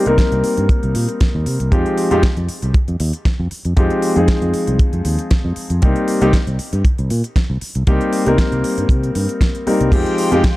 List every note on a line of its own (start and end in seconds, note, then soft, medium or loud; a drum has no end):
0.05 0.16 C2 medium
0.05 1.69 G3 medium
0.05 1.69 A#3 medium
0.05 1.69 C4 medium
0.05 1.69 D#4 medium
0.05 1.70 A#4 medium
0.05 closed hi-hat soft
0.18 kick medium
0.18 snare loud
0.18 closed hi-hat medium
0.32 0.41 C2 medium
0.32 closed hi-hat soft
0.44 muted fingered electric bass stroke soft
0.44 open hi-hat medium
0.57 0.67 G2 medium
0.57 closed hi-hat soft
0.69 kick loud
0.69 closed hi-hat medium
0.83 0.93 C2 medium
0.83 closed hi-hat soft
0.95 1.06 A#2 medium
0.95 open hi-hat loud
1.09 closed hi-hat soft
1.21 kick loud
1.21 snare loud
1.21 closed hi-hat medium
1.35 1.44 D#2 medium
1.46 1.57 C3 medium
1.46 open hi-hat medium
1.60 1.69 C2 medium
1.60 closed hi-hat soft
1.72 1.83 F2 medium
1.72 2.08 F3 medium
1.72 2.08 G#3 medium
1.72 2.08 C4 medium
1.72 2.08 D#4 medium
1.72 2.08 G4 medium
1.72 kick loud
1.72 closed hi-hat medium
1.86 closed hi-hat soft
1.98 open hi-hat loud
2.11 2.21 F2 medium
2.11 2.23 F3 medium
2.11 2.23 G#3 medium
2.11 2.23 C4 medium
2.11 2.23 D#4 medium
2.11 2.23 G4 medium
2.11 closed hi-hat soft
2.23 kick loud
2.23 snare loud
2.23 closed hi-hat medium
2.37 2.46 F2 medium
2.37 closed hi-hat soft
2.49 muted fingered electric bass stroke soft
2.49 open hi-hat medium
2.62 2.72 C2 medium
2.62 closed hi-hat soft
2.74 kick loud
2.74 closed hi-hat medium
2.88 2.98 F2 medium
2.88 closed hi-hat soft
3.00 3.11 D#2 loud
3.00 open hi-hat loud
3.13 closed hi-hat soft
3.25 kick loud
3.25 snare loud
3.25 closed hi-hat medium
3.39 3.49 F2 medium
3.51 muted fingered electric bass stroke soft
3.51 open hi-hat medium
3.65 3.75 F2 medium
3.65 closed hi-hat soft
3.76 3.88 F2 medium
3.76 4.13 F3 medium
3.76 4.13 G#3 medium
3.76 4.13 C4 medium
3.76 4.13 D#4 medium
3.76 4.13 G4 loud
3.76 kick loud
3.76 closed hi-hat medium
3.90 closed hi-hat soft
4.02 open hi-hat loud
4.16 4.26 F2 medium
4.16 5.79 F3 medium
4.16 5.79 G#3 medium
4.16 5.79 C4 medium
4.16 5.80 D#4 medium
4.16 5.80 G#4 medium
4.16 closed hi-hat soft
4.28 kick medium
4.28 snare loud
4.28 closed hi-hat medium
4.42 4.51 F2 medium
4.42 closed hi-hat soft
4.54 muted fingered electric bass stroke soft
4.54 open hi-hat medium
4.67 4.77 C2 medium
4.67 closed hi-hat soft
4.79 kick loud
4.79 closed hi-hat medium
4.93 5.03 F2 medium
4.93 closed hi-hat soft
5.05 5.16 D#2 loud
5.05 open hi-hat loud
5.19 closed hi-hat soft
5.31 kick loud
5.31 snare loud
5.31 closed hi-hat medium
5.45 5.54 F2 medium
5.56 muted fingered electric bass stroke soft
5.56 open hi-hat medium
5.70 5.80 F2 medium
5.70 closed hi-hat medium
5.82 5.93 C2 medium
5.82 6.18 G3 medium
5.82 6.18 A#3 medium
5.82 6.18 C4 medium
5.82 6.19 D#4 medium
5.82 6.19 G4 medium
5.82 kick loud
5.82 closed hi-hat medium
5.96 closed hi-hat soft
6.08 open hi-hat loud
6.21 6.31 C2 medium
6.21 6.33 G3 medium
6.21 6.33 A#3 medium
6.21 6.33 C4 medium
6.21 6.33 D#4 medium
6.21 6.33 G4 loud
6.21 closed hi-hat medium
6.33 kick loud
6.33 snare loud
6.33 closed hi-hat medium
6.47 6.56 C2 medium
6.47 closed hi-hat soft
6.59 muted fingered electric bass stroke soft
6.59 open hi-hat medium
6.73 6.82 G2 medium
6.73 closed hi-hat medium
6.85 kick loud
6.85 closed hi-hat medium
6.98 7.08 C2 medium
6.98 closed hi-hat soft
7.10 7.21 A#2 loud
7.10 open hi-hat loud
7.24 closed hi-hat medium
7.36 kick medium
7.36 snare loud
7.36 closed hi-hat medium
7.50 7.59 C2 medium
7.61 muted fingered electric bass stroke soft
7.61 open hi-hat medium
7.75 7.85 C2 medium
7.75 closed hi-hat medium
7.87 7.98 C2 medium
7.87 8.23 G3 medium
7.87 8.23 A#3 medium
7.87 8.23 C4 medium
7.87 8.24 D#4 medium
7.87 8.24 G4 loud
7.87 kick loud
7.87 closed hi-hat medium
8.01 closed hi-hat soft
8.13 open hi-hat loud
8.26 8.36 C2 medium
8.26 9.64 G3 medium
8.26 9.64 A#3 medium
8.26 9.65 C4 medium
8.26 9.65 D#4 medium
8.26 9.65 A#4 medium
8.26 closed hi-hat soft
8.38 kick medium
8.38 snare loud
8.38 closed hi-hat medium
8.52 8.62 C2 medium
8.52 closed hi-hat soft
8.64 muted fingered electric bass stroke soft
8.64 open hi-hat medium
8.78 8.87 G2 medium
8.78 closed hi-hat medium
8.89 9.10 C3 medium
8.89 kick loud
8.89 closed hi-hat medium
9.03 closed hi-hat soft
9.15 9.26 G2 medium
9.15 open hi-hat loud
9.29 closed hi-hat medium
9.41 kick medium
9.41 snare loud
9.41 closed hi-hat medium
9.55 closed hi-hat soft
9.66 9.89 G3 medium
9.66 9.90 A#3 medium
9.66 9.90 C4 medium
9.66 9.90 D#4 medium
9.66 9.90 A#4 medium
9.66 muted fingered electric bass stroke soft
9.66 open hi-hat medium
9.81 9.90 C2 medium
9.81 closed hi-hat medium
9.92 10.03 F2 medium
9.92 10.28 F3 medium
9.92 10.28 G#3 medium
9.92 10.29 C4 medium
9.92 10.29 D#4 medium
9.92 10.57 F4 medium
9.92 10.29 G4 medium
9.92 10.57 G5 medium
9.92 kick loud
9.92 closed hi-hat medium
9.92 crash medium
10.06 closed hi-hat soft
10.18 open hi-hat loud
10.31 10.41 F2 medium
10.31 10.43 F3 medium
10.31 10.43 G#3 medium
10.31 10.43 C4 medium
10.31 10.43 D#4 medium
10.31 10.44 G4 loud
10.31 closed hi-hat medium
10.44 kick loud
10.44 snare loud
10.44 closed hi-hat medium